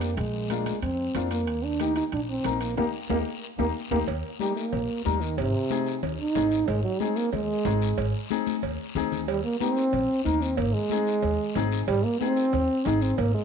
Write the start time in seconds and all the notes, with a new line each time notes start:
Already playing: F2
0.01 A#3, high timbale, short guiro
0.17 A#1 G#3, high timbale, long guiro
0.50 A#3 D4 F4, high conga, high timbale, short guiro
0.66 high conga, high timbale, short guiro
0.82 F2 C4, high timbale, long guiro
1.15 F2 A#3 D4 F4, high conga, high timbale, low timbale, short guiro
1.31 A#3, high timbale, short guiro
1.47 D#2, high timbale, long guiro
1.64 D4
1.80 A#3 D#4 G4, high conga, high timbale, short guiro
1.96 D#4, high timbale, short guiro
2.12 A#1 D4, high timbale, long guiro
2.30 C4
2.44 A#1 A#3 D#4 A#4, high conga, high timbale, low timbale, short guiro
2.61 A#3, high timbale, short guiro
2.77 D#2 A#3 D#4 G4, high conga, high timbale, long guiro
3.10 D#2 A#3 D#4 G4, high conga, high timbale, long guiro
3.58 D#2 A#3 D#4 G4, high conga, high timbale, long guiro
3.91 D#2 A#3 D#4 G4, high conga, high timbale, long guiro
4.07 D#2, cowbell, high conga, long guiro
4.39 G3 A#3 D#4 G4, high conga, short guiro
4.56 A#3, short guiro
4.73 A#1, cowbell, high conga, low conga, long guiro
5.05 D#2 G3 A#3 D#4 A#4, high conga, short guiro
5.21 D#3, short guiro
5.37 G#1 C3, cowbell, high conga, low conga, long guiro
5.70 C4 D#4 G#4, high conga, short guiro
5.86 short guiro
6.03 D#2, cowbell, high conga, low conga, long guiro
6.19 D#4
6.35 G#1 C4 D#4 G#4, high conga, low timbale, short guiro
6.51 short guiro
6.68 G#1 G#3, cowbell, long guiro
6.84 F#3
7.00 G#3 C4 D#4 G#4, high conga, short guiro
7.16 A#3, short guiro
7.32 D#2 G#3, cowbell, high conga, low conga, long guiro
7.65 G#1 C4 D#4 G#4, high conga, low timbale, short guiro
7.82 short guiro
7.98 G#1, cowbell, high conga, long guiro
8.30 C4 D#4 G#4, high conga, short guiro
8.47 high conga, short guiro
8.63 D#2, cowbell, long guiro
8.95 D2 C4 D#4 G#4, low conga, short guiro
9.12 low conga, short guiro
9.28 D#2 G3, cowbell, long guiro
9.44 A#3
9.60 A#3 C4 D#4 G4, high conga, short guiro
9.77 short guiro
9.92 A#1, cowbell, high conga, low conga, long guiro
10.25 D#2 A#3 D#4 A#4, high conga, short guiro
10.41 C4, short guiro
10.57 G#1 A#3, cowbell, high conga, low conga, long guiro
10.73 G#3
10.90 C4 D#4 G#4, high conga, short guiro
11.07 short guiro
11.22 D#2, cowbell, high conga, low conga, long guiro
11.55 G#1 C4 D#4 G#4, high conga, low timbale, short guiro
11.72 short guiro
11.88 G#1 G3, cowbell, long guiro
12.04 A#3
12.20 C4 D#4 G#4, high conga, short guiro
12.36 short guiro
12.53 D#2, cowbell, high conga, low conga, long guiro
12.85 G#1 C4 D#4 G#4, high conga, low timbale, short guiro
13.02 C4, short guiro
13.18 G#1 A#3, cowbell, long guiro
13.35 G#3